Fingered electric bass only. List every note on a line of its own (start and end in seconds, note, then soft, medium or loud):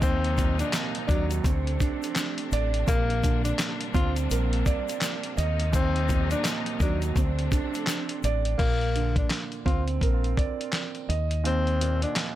0.00 0.61 D#2 loud
1.09 1.41 D#2 loud
1.44 1.76 D2 loud
2.52 2.84 A1 loud
2.88 3.51 A#1 loud
3.95 4.26 D2 medium
4.31 4.62 A#1 loud
5.38 6.33 D#2 loud
6.80 7.12 D#2 loud
7.16 7.48 D2 loud
8.23 8.55 A1 medium
8.59 9.22 A#1 loud
9.66 9.98 D2 medium
10.01 10.33 A#1 loud
11.09 12.04 D#2 loud